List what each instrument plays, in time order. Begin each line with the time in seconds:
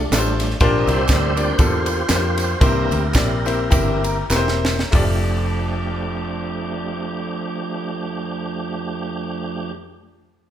Already playing: tonewheel organ G3 A3 D4
0.12 fingered electric bass A1, grand piano A3 D4 F4 G4 B4, snare, clap, ride, tambourine
0.18 grand piano C5
0.40 snare, ride, tambourine
0.50 snare
0.60 fingered electric bass A#1, grand piano A#2 A#3 D4 F4 G4 C5, tonewheel organ G3 C4 D4, kick, ride, tambourine
0.79 tonewheel organ D#5
0.87 fingered electric bass C2, tonewheel organ G4 C5 E5, ride, tambourine
1.09 fingered electric bass D2, grand piano A#3 D4 F4 G4 D5, kick, snare, clap, ride, tambourine
1.36 tonewheel organ G3 C4 D4 D5, grand piano A#3 D4 F4 G4 D5, ride, tambourine
1.52 tonewheel organ B4
1.56 fingered electric bass E2, grand piano A#3 D4 F4 G4 A4, tonewheel organ F4 G4 C5, kick, ride, tambourine
1.86 ride, tambourine
2.09 fingered electric bass F2, grand piano A#3 D4 F4 G4 B4, snare, clap, ride, tambourine
2.15 grand piano C5
2.38 snare, ride, tambourine
2.59 fingered electric bass C2, grand piano C3 A#3 C4 E4 G4 C5, tonewheel organ E3 A#3 D4 E4 G4 A#4, kick, ride, tambourine
2.91 fingered electric bass D2, ride, tambourine
3.14 fingered electric bass A#1, grand piano A#3 C4 E4 G4 D5, kick, snare, clap, ride, tambourine
3.46 grand piano A#3 C4 E4 G4 C5 E5, ride, tambourine
3.70 fingered electric bass G1, tonewheel organ E3 A#3 D4, grand piano A#3 C4 E4 G4 A#4 G5, kick, ride, tambourine
4.04 grand piano A#5, ride, tambourine
4.30 fingered electric bass E1, grand piano A#3 C4 E4 G4 B4 A#5, snare, clap, tambourine
4.36 grand piano C5
4.48 snare
4.65 snare, tambourine
4.79 snare
4.91 fingered electric bass F1, grand piano F2 A3 F4 G4 D5, tonewheel organ F3 A3 D4 G4, kick, clap, open hi-hat